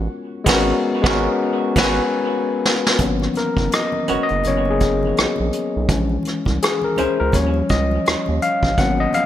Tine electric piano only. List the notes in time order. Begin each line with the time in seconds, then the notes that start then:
0.44 G#3 B3
0.49 C#4 F#4 A#4
1.02 G#3 B3
1.06 C#4 F#4 A#4
1.78 B4 G#5
3.00 F#3 A#3 B3 C#4
3.37 A#4
3.74 D#5
4.23 D#5
4.47 F#3 A#3 B3 C#4 C#5
4.71 G#4
5.91 E3 G#3 C#4
6.63 G#4
6.84 A#4
6.99 C5
7.20 A#4
7.35 F3 G3 C#4 C#5
7.70 D#5
8.42 F5
8.79 F#3 A#3 B3 C#4 F#5
9.00 D#5
9.14 F5